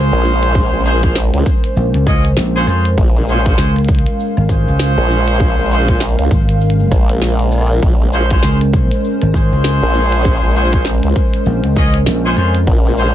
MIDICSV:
0, 0, Header, 1, 6, 480
1, 0, Start_track
1, 0, Key_signature, -5, "minor"
1, 0, Tempo, 606061
1, 438, Time_signature, 4, 2, 24, 8
1, 10412, End_track
2, 0, Start_track
2, 0, Title_t, "Analog synth pad"
2, 0, Program_c, 0, 89
2, 0, Note_on_c, 0, 56, 83
2, 0, Note_on_c, 0, 61, 74
2, 0, Note_on_c, 0, 70, 75
2, 0, Note_on_c, 0, 72, 91
2, 2356, Note_off_c, 0, 72, 0
2, 2360, Note_on_c, 0, 77, 94
2, 6193, Note_on_c, 0, 72, 91
2, 6196, Note_off_c, 0, 77, 0
2, 10032, Note_off_c, 0, 72, 0
2, 10043, Note_on_c, 0, 75, 92
2, 10412, Note_off_c, 0, 56, 0
2, 10412, Note_off_c, 0, 61, 0
2, 10412, Note_off_c, 0, 70, 0
2, 10412, Note_off_c, 0, 75, 0
2, 10412, End_track
3, 0, Start_track
3, 0, Title_t, "Horn section"
3, 0, Program_c, 1, 61
3, 0, Note_on_c, 1, 61, 95
3, 0, Note_on_c, 1, 65, 86
3, 0, Note_on_c, 1, 68, 88
3, 0, Note_on_c, 1, 72, 107
3, 654, Note_off_c, 1, 65, 0
3, 654, Note_off_c, 1, 68, 0
3, 655, Note_off_c, 1, 61, 0
3, 655, Note_off_c, 1, 72, 0
3, 675, Note_on_c, 1, 72, 113
3, 676, Note_on_c, 1, 65, 91
3, 676, Note_on_c, 1, 68, 92
3, 677, Note_on_c, 1, 61, 96
3, 798, Note_off_c, 1, 72, 0
3, 799, Note_off_c, 1, 61, 0
3, 799, Note_off_c, 1, 65, 0
3, 799, Note_off_c, 1, 68, 0
3, 820, Note_on_c, 1, 65, 79
3, 821, Note_on_c, 1, 61, 88
3, 821, Note_on_c, 1, 68, 78
3, 821, Note_on_c, 1, 72, 96
3, 934, Note_off_c, 1, 65, 0
3, 935, Note_off_c, 1, 61, 0
3, 935, Note_off_c, 1, 68, 0
3, 935, Note_off_c, 1, 72, 0
3, 1637, Note_on_c, 1, 61, 93
3, 1637, Note_on_c, 1, 65, 89
3, 1637, Note_on_c, 1, 68, 86
3, 1638, Note_on_c, 1, 75, 109
3, 1792, Note_off_c, 1, 61, 0
3, 1792, Note_off_c, 1, 65, 0
3, 1792, Note_off_c, 1, 68, 0
3, 1793, Note_off_c, 1, 75, 0
3, 2025, Note_on_c, 1, 61, 100
3, 2025, Note_on_c, 1, 68, 88
3, 2025, Note_on_c, 1, 72, 110
3, 2026, Note_on_c, 1, 65, 92
3, 2105, Note_off_c, 1, 61, 0
3, 2105, Note_off_c, 1, 65, 0
3, 2105, Note_off_c, 1, 68, 0
3, 2105, Note_off_c, 1, 72, 0
3, 2119, Note_on_c, 1, 65, 74
3, 2120, Note_on_c, 1, 68, 72
3, 2121, Note_on_c, 1, 61, 79
3, 2122, Note_on_c, 1, 72, 89
3, 2273, Note_off_c, 1, 65, 0
3, 2274, Note_off_c, 1, 61, 0
3, 2274, Note_off_c, 1, 68, 0
3, 2274, Note_off_c, 1, 72, 0
3, 2600, Note_on_c, 1, 65, 84
3, 2601, Note_on_c, 1, 61, 90
3, 2602, Note_on_c, 1, 68, 83
3, 2602, Note_on_c, 1, 72, 98
3, 2721, Note_off_c, 1, 61, 0
3, 2721, Note_off_c, 1, 65, 0
3, 2721, Note_off_c, 1, 68, 0
3, 2722, Note_off_c, 1, 72, 0
3, 2746, Note_on_c, 1, 61, 94
3, 2746, Note_on_c, 1, 68, 85
3, 2746, Note_on_c, 1, 72, 103
3, 2747, Note_on_c, 1, 65, 86
3, 2953, Note_off_c, 1, 61, 0
3, 2953, Note_off_c, 1, 68, 0
3, 2953, Note_off_c, 1, 72, 0
3, 2954, Note_off_c, 1, 65, 0
3, 3559, Note_on_c, 1, 61, 97
3, 3559, Note_on_c, 1, 65, 91
3, 3559, Note_on_c, 1, 68, 88
3, 3559, Note_on_c, 1, 72, 105
3, 4495, Note_off_c, 1, 61, 0
3, 4495, Note_off_c, 1, 65, 0
3, 4495, Note_off_c, 1, 68, 0
3, 4495, Note_off_c, 1, 72, 0
3, 4519, Note_on_c, 1, 61, 100
3, 4521, Note_on_c, 1, 65, 90
3, 4521, Note_on_c, 1, 68, 91
3, 4521, Note_on_c, 1, 72, 110
3, 4640, Note_off_c, 1, 61, 0
3, 4641, Note_off_c, 1, 65, 0
3, 4641, Note_off_c, 1, 68, 0
3, 4641, Note_off_c, 1, 72, 0
3, 4663, Note_on_c, 1, 61, 84
3, 4663, Note_on_c, 1, 65, 79
3, 4663, Note_on_c, 1, 72, 95
3, 4664, Note_on_c, 1, 68, 78
3, 4775, Note_off_c, 1, 61, 0
3, 4776, Note_off_c, 1, 65, 0
3, 4776, Note_off_c, 1, 68, 0
3, 4776, Note_off_c, 1, 72, 0
3, 6439, Note_on_c, 1, 61, 90
3, 6439, Note_on_c, 1, 72, 99
3, 6440, Note_on_c, 1, 65, 84
3, 6441, Note_on_c, 1, 68, 85
3, 6560, Note_off_c, 1, 61, 0
3, 6560, Note_off_c, 1, 72, 0
3, 6561, Note_off_c, 1, 65, 0
3, 6561, Note_off_c, 1, 68, 0
3, 6584, Note_on_c, 1, 65, 85
3, 6584, Note_on_c, 1, 68, 85
3, 6584, Note_on_c, 1, 72, 101
3, 6585, Note_on_c, 1, 61, 92
3, 6792, Note_off_c, 1, 61, 0
3, 6792, Note_off_c, 1, 65, 0
3, 6792, Note_off_c, 1, 68, 0
3, 6792, Note_off_c, 1, 72, 0
3, 7399, Note_on_c, 1, 61, 95
3, 7399, Note_on_c, 1, 65, 89
3, 7400, Note_on_c, 1, 68, 87
3, 7400, Note_on_c, 1, 72, 104
3, 8335, Note_off_c, 1, 61, 0
3, 8335, Note_off_c, 1, 65, 0
3, 8336, Note_off_c, 1, 68, 0
3, 8336, Note_off_c, 1, 72, 0
3, 8356, Note_on_c, 1, 65, 91
3, 8357, Note_on_c, 1, 68, 90
3, 8357, Note_on_c, 1, 72, 108
3, 8358, Note_on_c, 1, 61, 97
3, 8478, Note_off_c, 1, 65, 0
3, 8479, Note_off_c, 1, 61, 0
3, 8479, Note_off_c, 1, 68, 0
3, 8479, Note_off_c, 1, 72, 0
3, 8500, Note_on_c, 1, 68, 79
3, 8501, Note_on_c, 1, 61, 85
3, 8501, Note_on_c, 1, 72, 97
3, 8502, Note_on_c, 1, 65, 81
3, 8614, Note_off_c, 1, 68, 0
3, 8615, Note_off_c, 1, 61, 0
3, 8615, Note_off_c, 1, 65, 0
3, 8615, Note_off_c, 1, 72, 0
3, 9317, Note_on_c, 1, 65, 86
3, 9317, Note_on_c, 1, 68, 89
3, 9317, Note_on_c, 1, 75, 109
3, 9318, Note_on_c, 1, 61, 96
3, 9472, Note_off_c, 1, 61, 0
3, 9472, Note_off_c, 1, 65, 0
3, 9472, Note_off_c, 1, 68, 0
3, 9472, Note_off_c, 1, 75, 0
3, 9701, Note_on_c, 1, 72, 113
3, 9702, Note_on_c, 1, 61, 100
3, 9703, Note_on_c, 1, 65, 90
3, 9703, Note_on_c, 1, 68, 93
3, 9783, Note_off_c, 1, 72, 0
3, 9784, Note_off_c, 1, 61, 0
3, 9784, Note_off_c, 1, 65, 0
3, 9784, Note_off_c, 1, 68, 0
3, 9798, Note_on_c, 1, 61, 79
3, 9798, Note_on_c, 1, 65, 73
3, 9798, Note_on_c, 1, 72, 87
3, 9799, Note_on_c, 1, 68, 73
3, 9952, Note_off_c, 1, 65, 0
3, 9953, Note_off_c, 1, 61, 0
3, 9953, Note_off_c, 1, 68, 0
3, 9953, Note_off_c, 1, 72, 0
3, 10277, Note_on_c, 1, 65, 86
3, 10278, Note_on_c, 1, 68, 82
3, 10279, Note_on_c, 1, 72, 101
3, 10280, Note_on_c, 1, 61, 90
3, 10399, Note_off_c, 1, 65, 0
3, 10400, Note_off_c, 1, 61, 0
3, 10400, Note_off_c, 1, 68, 0
3, 10400, Note_off_c, 1, 72, 0
3, 10412, End_track
4, 0, Start_track
4, 0, Title_t, "Slap bass"
4, 0, Program_c, 2, 36
4, 1398, Note_on_c, 2, 34, 98
4, 1518, Note_off_c, 2, 34, 0
4, 1540, Note_on_c, 2, 37, 100
4, 1862, Note_off_c, 2, 37, 0
4, 1879, Note_on_c, 2, 34, 94
4, 2103, Note_off_c, 2, 34, 0
4, 2117, Note_on_c, 2, 41, 93
4, 2342, Note_off_c, 2, 41, 0
4, 2837, Note_on_c, 2, 37, 94
4, 3198, Note_off_c, 2, 37, 0
4, 3462, Note_on_c, 2, 32, 102
4, 3679, Note_off_c, 2, 32, 0
4, 3703, Note_on_c, 2, 37, 97
4, 3919, Note_off_c, 2, 37, 0
4, 4998, Note_on_c, 2, 32, 94
4, 5462, Note_off_c, 2, 32, 0
4, 6682, Note_on_c, 2, 37, 95
4, 7040, Note_off_c, 2, 37, 0
4, 7305, Note_on_c, 2, 32, 97
4, 7520, Note_off_c, 2, 32, 0
4, 7541, Note_on_c, 2, 37, 94
4, 7758, Note_off_c, 2, 37, 0
4, 9078, Note_on_c, 2, 34, 101
4, 9198, Note_off_c, 2, 34, 0
4, 9223, Note_on_c, 2, 37, 99
4, 9543, Note_off_c, 2, 37, 0
4, 9563, Note_on_c, 2, 34, 97
4, 9785, Note_off_c, 2, 34, 0
4, 9799, Note_on_c, 2, 41, 96
4, 10023, Note_off_c, 2, 41, 0
4, 10412, End_track
5, 0, Start_track
5, 0, Title_t, "Wobble bass"
5, 0, Program_c, 3, 39
5, 102, Note_on_c, 3, 34, 93
5, 558, Note_off_c, 3, 34, 0
5, 581, Note_on_c, 3, 34, 100
5, 1038, Note_off_c, 3, 34, 0
5, 1059, Note_on_c, 3, 37, 94
5, 1141, Note_off_c, 3, 37, 0
5, 2357, Note_on_c, 3, 34, 97
5, 2822, Note_off_c, 3, 34, 0
5, 3942, Note_on_c, 3, 34, 95
5, 4398, Note_off_c, 3, 34, 0
5, 4423, Note_on_c, 3, 34, 101
5, 4879, Note_off_c, 3, 34, 0
5, 4902, Note_on_c, 3, 37, 92
5, 4982, Note_off_c, 3, 37, 0
5, 5476, Note_on_c, 3, 34, 94
5, 6182, Note_off_c, 3, 34, 0
5, 6199, Note_on_c, 3, 34, 100
5, 6663, Note_off_c, 3, 34, 0
5, 7783, Note_on_c, 3, 34, 96
5, 8239, Note_off_c, 3, 34, 0
5, 8261, Note_on_c, 3, 34, 103
5, 8718, Note_off_c, 3, 34, 0
5, 8742, Note_on_c, 3, 37, 95
5, 8823, Note_off_c, 3, 37, 0
5, 10037, Note_on_c, 3, 34, 98
5, 10412, Note_off_c, 3, 34, 0
5, 10412, End_track
6, 0, Start_track
6, 0, Title_t, "Drums"
6, 102, Note_on_c, 9, 69, 34
6, 181, Note_off_c, 9, 69, 0
6, 197, Note_on_c, 9, 69, 92
6, 277, Note_off_c, 9, 69, 0
6, 339, Note_on_c, 9, 42, 68
6, 343, Note_on_c, 9, 69, 38
6, 418, Note_off_c, 9, 42, 0
6, 422, Note_off_c, 9, 69, 0
6, 436, Note_on_c, 9, 36, 124
6, 441, Note_on_c, 9, 69, 51
6, 516, Note_off_c, 9, 36, 0
6, 520, Note_off_c, 9, 69, 0
6, 580, Note_on_c, 9, 69, 37
6, 659, Note_off_c, 9, 69, 0
6, 679, Note_on_c, 9, 69, 110
6, 758, Note_off_c, 9, 69, 0
6, 817, Note_on_c, 9, 42, 69
6, 820, Note_on_c, 9, 36, 109
6, 825, Note_on_c, 9, 69, 37
6, 896, Note_off_c, 9, 42, 0
6, 899, Note_off_c, 9, 36, 0
6, 905, Note_off_c, 9, 69, 0
6, 914, Note_on_c, 9, 38, 123
6, 915, Note_on_c, 9, 69, 53
6, 993, Note_off_c, 9, 38, 0
6, 994, Note_off_c, 9, 69, 0
6, 1059, Note_on_c, 9, 42, 54
6, 1063, Note_on_c, 9, 69, 42
6, 1138, Note_off_c, 9, 42, 0
6, 1142, Note_off_c, 9, 69, 0
6, 1153, Note_on_c, 9, 69, 98
6, 1157, Note_on_c, 9, 36, 110
6, 1232, Note_off_c, 9, 69, 0
6, 1236, Note_off_c, 9, 36, 0
6, 1298, Note_on_c, 9, 42, 72
6, 1304, Note_on_c, 9, 69, 46
6, 1377, Note_off_c, 9, 42, 0
6, 1384, Note_off_c, 9, 69, 0
6, 1398, Note_on_c, 9, 69, 58
6, 1477, Note_off_c, 9, 69, 0
6, 1539, Note_on_c, 9, 42, 56
6, 1618, Note_off_c, 9, 42, 0
6, 1636, Note_on_c, 9, 37, 54
6, 1637, Note_on_c, 9, 36, 109
6, 1642, Note_on_c, 9, 69, 98
6, 1715, Note_off_c, 9, 37, 0
6, 1716, Note_off_c, 9, 36, 0
6, 1721, Note_off_c, 9, 69, 0
6, 1780, Note_on_c, 9, 42, 69
6, 1785, Note_on_c, 9, 69, 39
6, 1859, Note_off_c, 9, 42, 0
6, 1864, Note_off_c, 9, 69, 0
6, 1874, Note_on_c, 9, 38, 121
6, 1880, Note_on_c, 9, 69, 59
6, 1953, Note_off_c, 9, 38, 0
6, 1959, Note_off_c, 9, 69, 0
6, 2027, Note_on_c, 9, 69, 37
6, 2106, Note_off_c, 9, 69, 0
6, 2116, Note_on_c, 9, 37, 55
6, 2123, Note_on_c, 9, 69, 94
6, 2195, Note_off_c, 9, 37, 0
6, 2202, Note_off_c, 9, 69, 0
6, 2259, Note_on_c, 9, 69, 41
6, 2260, Note_on_c, 9, 42, 69
6, 2338, Note_off_c, 9, 69, 0
6, 2339, Note_off_c, 9, 42, 0
6, 2358, Note_on_c, 9, 36, 127
6, 2365, Note_on_c, 9, 69, 53
6, 2437, Note_off_c, 9, 36, 0
6, 2444, Note_off_c, 9, 69, 0
6, 2503, Note_on_c, 9, 69, 36
6, 2583, Note_off_c, 9, 69, 0
6, 2599, Note_on_c, 9, 69, 100
6, 2678, Note_off_c, 9, 69, 0
6, 2740, Note_on_c, 9, 36, 109
6, 2740, Note_on_c, 9, 42, 67
6, 2740, Note_on_c, 9, 69, 40
6, 2819, Note_off_c, 9, 69, 0
6, 2820, Note_off_c, 9, 36, 0
6, 2820, Note_off_c, 9, 42, 0
6, 2835, Note_on_c, 9, 38, 127
6, 2836, Note_on_c, 9, 69, 49
6, 2914, Note_off_c, 9, 38, 0
6, 2915, Note_off_c, 9, 69, 0
6, 2980, Note_on_c, 9, 37, 36
6, 2980, Note_on_c, 9, 42, 24
6, 2983, Note_on_c, 9, 69, 40
6, 2998, Note_off_c, 9, 42, 0
6, 2998, Note_on_c, 9, 42, 29
6, 3046, Note_off_c, 9, 42, 0
6, 3046, Note_on_c, 9, 42, 32
6, 3059, Note_off_c, 9, 37, 0
6, 3062, Note_off_c, 9, 69, 0
6, 3074, Note_on_c, 9, 69, 101
6, 3077, Note_off_c, 9, 42, 0
6, 3077, Note_on_c, 9, 36, 115
6, 3077, Note_on_c, 9, 42, 37
6, 3126, Note_off_c, 9, 42, 0
6, 3126, Note_on_c, 9, 42, 43
6, 3154, Note_off_c, 9, 69, 0
6, 3157, Note_off_c, 9, 36, 0
6, 3157, Note_off_c, 9, 42, 0
6, 3157, Note_on_c, 9, 42, 45
6, 3216, Note_on_c, 9, 69, 40
6, 3219, Note_off_c, 9, 42, 0
6, 3219, Note_on_c, 9, 42, 68
6, 3295, Note_off_c, 9, 69, 0
6, 3299, Note_off_c, 9, 42, 0
6, 3326, Note_on_c, 9, 69, 53
6, 3405, Note_off_c, 9, 69, 0
6, 3462, Note_on_c, 9, 37, 36
6, 3541, Note_off_c, 9, 37, 0
6, 3557, Note_on_c, 9, 36, 65
6, 3560, Note_on_c, 9, 69, 106
6, 3637, Note_off_c, 9, 36, 0
6, 3639, Note_off_c, 9, 69, 0
6, 3709, Note_on_c, 9, 69, 43
6, 3788, Note_off_c, 9, 69, 0
6, 3797, Note_on_c, 9, 38, 125
6, 3797, Note_on_c, 9, 42, 68
6, 3809, Note_on_c, 9, 69, 50
6, 3876, Note_off_c, 9, 38, 0
6, 3876, Note_off_c, 9, 42, 0
6, 3888, Note_off_c, 9, 69, 0
6, 3950, Note_on_c, 9, 69, 36
6, 4029, Note_off_c, 9, 69, 0
6, 4048, Note_on_c, 9, 69, 94
6, 4127, Note_off_c, 9, 69, 0
6, 4180, Note_on_c, 9, 42, 69
6, 4185, Note_on_c, 9, 69, 38
6, 4259, Note_off_c, 9, 42, 0
6, 4264, Note_off_c, 9, 69, 0
6, 4276, Note_on_c, 9, 69, 53
6, 4278, Note_on_c, 9, 36, 125
6, 4355, Note_off_c, 9, 69, 0
6, 4357, Note_off_c, 9, 36, 0
6, 4424, Note_on_c, 9, 69, 41
6, 4504, Note_off_c, 9, 69, 0
6, 4525, Note_on_c, 9, 69, 100
6, 4604, Note_off_c, 9, 69, 0
6, 4660, Note_on_c, 9, 42, 68
6, 4661, Note_on_c, 9, 36, 107
6, 4663, Note_on_c, 9, 69, 38
6, 4739, Note_off_c, 9, 42, 0
6, 4740, Note_off_c, 9, 36, 0
6, 4742, Note_off_c, 9, 69, 0
6, 4755, Note_on_c, 9, 38, 126
6, 4766, Note_on_c, 9, 69, 54
6, 4834, Note_off_c, 9, 38, 0
6, 4845, Note_off_c, 9, 69, 0
6, 4901, Note_on_c, 9, 42, 52
6, 4903, Note_on_c, 9, 69, 39
6, 4980, Note_off_c, 9, 42, 0
6, 4982, Note_off_c, 9, 69, 0
6, 4998, Note_on_c, 9, 36, 109
6, 5004, Note_on_c, 9, 69, 90
6, 5077, Note_off_c, 9, 36, 0
6, 5084, Note_off_c, 9, 69, 0
6, 5140, Note_on_c, 9, 42, 67
6, 5149, Note_on_c, 9, 69, 38
6, 5219, Note_off_c, 9, 42, 0
6, 5228, Note_off_c, 9, 69, 0
6, 5237, Note_on_c, 9, 69, 57
6, 5307, Note_on_c, 9, 42, 52
6, 5316, Note_off_c, 9, 69, 0
6, 5382, Note_on_c, 9, 69, 36
6, 5386, Note_off_c, 9, 42, 0
6, 5461, Note_off_c, 9, 69, 0
6, 5476, Note_on_c, 9, 37, 50
6, 5477, Note_on_c, 9, 36, 109
6, 5477, Note_on_c, 9, 69, 91
6, 5555, Note_off_c, 9, 37, 0
6, 5556, Note_off_c, 9, 69, 0
6, 5557, Note_off_c, 9, 36, 0
6, 5619, Note_on_c, 9, 42, 63
6, 5621, Note_on_c, 9, 69, 38
6, 5698, Note_off_c, 9, 42, 0
6, 5700, Note_off_c, 9, 69, 0
6, 5715, Note_on_c, 9, 38, 122
6, 5717, Note_on_c, 9, 69, 53
6, 5794, Note_off_c, 9, 38, 0
6, 5796, Note_off_c, 9, 69, 0
6, 5856, Note_on_c, 9, 42, 37
6, 5860, Note_on_c, 9, 69, 38
6, 5936, Note_off_c, 9, 42, 0
6, 5940, Note_off_c, 9, 69, 0
6, 5952, Note_on_c, 9, 69, 90
6, 5956, Note_on_c, 9, 37, 23
6, 5979, Note_off_c, 9, 37, 0
6, 5979, Note_on_c, 9, 37, 27
6, 6003, Note_off_c, 9, 37, 0
6, 6003, Note_on_c, 9, 37, 32
6, 6026, Note_off_c, 9, 37, 0
6, 6026, Note_on_c, 9, 37, 35
6, 6031, Note_off_c, 9, 69, 0
6, 6035, Note_off_c, 9, 37, 0
6, 6035, Note_on_c, 9, 37, 40
6, 6073, Note_off_c, 9, 37, 0
6, 6073, Note_on_c, 9, 37, 44
6, 6097, Note_on_c, 9, 69, 42
6, 6152, Note_off_c, 9, 37, 0
6, 6176, Note_off_c, 9, 69, 0
6, 6197, Note_on_c, 9, 69, 50
6, 6198, Note_on_c, 9, 36, 121
6, 6276, Note_off_c, 9, 69, 0
6, 6277, Note_off_c, 9, 36, 0
6, 6349, Note_on_c, 9, 69, 35
6, 6428, Note_off_c, 9, 69, 0
6, 6435, Note_on_c, 9, 69, 99
6, 6514, Note_off_c, 9, 69, 0
6, 6578, Note_on_c, 9, 42, 67
6, 6578, Note_on_c, 9, 69, 42
6, 6581, Note_on_c, 9, 36, 108
6, 6657, Note_off_c, 9, 42, 0
6, 6657, Note_off_c, 9, 69, 0
6, 6660, Note_off_c, 9, 36, 0
6, 6673, Note_on_c, 9, 38, 123
6, 6679, Note_on_c, 9, 69, 56
6, 6753, Note_off_c, 9, 38, 0
6, 6759, Note_off_c, 9, 69, 0
6, 6820, Note_on_c, 9, 69, 37
6, 6821, Note_on_c, 9, 37, 34
6, 6821, Note_on_c, 9, 42, 51
6, 6899, Note_off_c, 9, 69, 0
6, 6900, Note_off_c, 9, 37, 0
6, 6900, Note_off_c, 9, 42, 0
6, 6917, Note_on_c, 9, 69, 88
6, 6918, Note_on_c, 9, 36, 110
6, 6997, Note_off_c, 9, 36, 0
6, 6997, Note_off_c, 9, 69, 0
6, 7061, Note_on_c, 9, 42, 63
6, 7062, Note_on_c, 9, 69, 44
6, 7140, Note_off_c, 9, 42, 0
6, 7141, Note_off_c, 9, 69, 0
6, 7163, Note_on_c, 9, 69, 48
6, 7242, Note_off_c, 9, 69, 0
6, 7299, Note_on_c, 9, 37, 36
6, 7299, Note_on_c, 9, 42, 53
6, 7378, Note_off_c, 9, 37, 0
6, 7378, Note_off_c, 9, 42, 0
6, 7398, Note_on_c, 9, 36, 59
6, 7409, Note_on_c, 9, 69, 101
6, 7477, Note_off_c, 9, 36, 0
6, 7489, Note_off_c, 9, 69, 0
6, 7547, Note_on_c, 9, 69, 39
6, 7627, Note_off_c, 9, 69, 0
6, 7637, Note_on_c, 9, 38, 118
6, 7637, Note_on_c, 9, 42, 64
6, 7644, Note_on_c, 9, 69, 49
6, 7716, Note_off_c, 9, 38, 0
6, 7716, Note_off_c, 9, 42, 0
6, 7723, Note_off_c, 9, 69, 0
6, 7792, Note_on_c, 9, 69, 33
6, 7871, Note_off_c, 9, 69, 0
6, 7878, Note_on_c, 9, 69, 98
6, 7957, Note_off_c, 9, 69, 0
6, 8018, Note_on_c, 9, 42, 63
6, 8026, Note_on_c, 9, 69, 43
6, 8097, Note_off_c, 9, 42, 0
6, 8105, Note_off_c, 9, 69, 0
6, 8118, Note_on_c, 9, 36, 118
6, 8123, Note_on_c, 9, 69, 48
6, 8198, Note_off_c, 9, 36, 0
6, 8202, Note_off_c, 9, 69, 0
6, 8260, Note_on_c, 9, 69, 33
6, 8339, Note_off_c, 9, 69, 0
6, 8360, Note_on_c, 9, 69, 98
6, 8439, Note_off_c, 9, 69, 0
6, 8498, Note_on_c, 9, 42, 66
6, 8499, Note_on_c, 9, 69, 36
6, 8501, Note_on_c, 9, 36, 103
6, 8577, Note_off_c, 9, 42, 0
6, 8578, Note_off_c, 9, 69, 0
6, 8580, Note_off_c, 9, 36, 0
6, 8592, Note_on_c, 9, 38, 119
6, 8600, Note_on_c, 9, 69, 50
6, 8671, Note_off_c, 9, 38, 0
6, 8679, Note_off_c, 9, 69, 0
6, 8737, Note_on_c, 9, 42, 50
6, 8748, Note_on_c, 9, 69, 37
6, 8816, Note_off_c, 9, 42, 0
6, 8827, Note_off_c, 9, 69, 0
6, 8833, Note_on_c, 9, 69, 92
6, 8838, Note_on_c, 9, 36, 105
6, 8913, Note_off_c, 9, 69, 0
6, 8917, Note_off_c, 9, 36, 0
6, 8978, Note_on_c, 9, 42, 64
6, 8980, Note_on_c, 9, 69, 41
6, 9057, Note_off_c, 9, 42, 0
6, 9059, Note_off_c, 9, 69, 0
6, 9074, Note_on_c, 9, 69, 57
6, 9153, Note_off_c, 9, 69, 0
6, 9216, Note_on_c, 9, 42, 51
6, 9296, Note_off_c, 9, 42, 0
6, 9314, Note_on_c, 9, 69, 88
6, 9318, Note_on_c, 9, 36, 103
6, 9393, Note_off_c, 9, 69, 0
6, 9397, Note_off_c, 9, 36, 0
6, 9456, Note_on_c, 9, 42, 61
6, 9458, Note_on_c, 9, 69, 43
6, 9535, Note_off_c, 9, 42, 0
6, 9537, Note_off_c, 9, 69, 0
6, 9554, Note_on_c, 9, 38, 113
6, 9554, Note_on_c, 9, 69, 52
6, 9633, Note_off_c, 9, 38, 0
6, 9634, Note_off_c, 9, 69, 0
6, 9700, Note_on_c, 9, 69, 36
6, 9780, Note_off_c, 9, 69, 0
6, 9793, Note_on_c, 9, 37, 54
6, 9794, Note_on_c, 9, 69, 84
6, 9872, Note_off_c, 9, 37, 0
6, 9873, Note_off_c, 9, 69, 0
6, 9937, Note_on_c, 9, 42, 62
6, 9940, Note_on_c, 9, 69, 38
6, 10016, Note_off_c, 9, 42, 0
6, 10020, Note_off_c, 9, 69, 0
6, 10034, Note_on_c, 9, 69, 51
6, 10037, Note_on_c, 9, 36, 115
6, 10113, Note_off_c, 9, 69, 0
6, 10116, Note_off_c, 9, 36, 0
6, 10183, Note_on_c, 9, 69, 35
6, 10262, Note_off_c, 9, 69, 0
6, 10274, Note_on_c, 9, 69, 82
6, 10353, Note_off_c, 9, 69, 0
6, 10412, End_track
0, 0, End_of_file